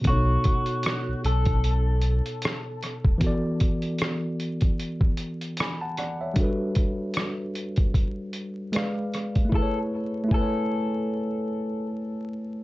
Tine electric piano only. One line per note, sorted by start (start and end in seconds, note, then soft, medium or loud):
0.01 3.15 B2 medium
0.01 3.16 B3 soft
0.06 0.13 C#4 soft
0.06 3.18 A4 medium
0.10 3.20 D#4 medium
0.10 3.19 C#5 medium
3.18 6.31 E3 medium
3.18 6.32 B3 medium
3.18 6.33 F#4 medium
3.24 6.34 A4 medium
3.24 5.56 D5 medium
5.60 5.81 G#5 soft
5.60 5.80 B5 medium
5.81 5.97 F#5 medium
5.81 5.97 A5 medium
5.99 6.20 D5 medium
5.99 6.19 F#5 medium
6.21 6.58 C#5 soft
6.21 6.58 E5 medium
6.34 8.68 G3 medium
6.34 8.69 D4 medium
6.38 8.70 F#4 medium
6.38 8.71 A4 medium
6.43 8.72 B4 medium
8.72 9.52 G#3 medium
8.72 9.52 G#4 medium
8.72 9.53 B4 medium
8.72 9.53 D5 medium
8.77 9.54 F5 medium
9.45 9.72 A3 medium
9.49 9.75 E4 medium
9.54 9.77 G#4 medium
9.58 9.79 B4 medium
9.62 9.82 C#5 medium
10.24 12.64 A3 medium
10.28 12.64 E4 medium
10.32 12.64 G#5 medium
10.37 12.64 B4 medium
10.41 12.64 C#5 medium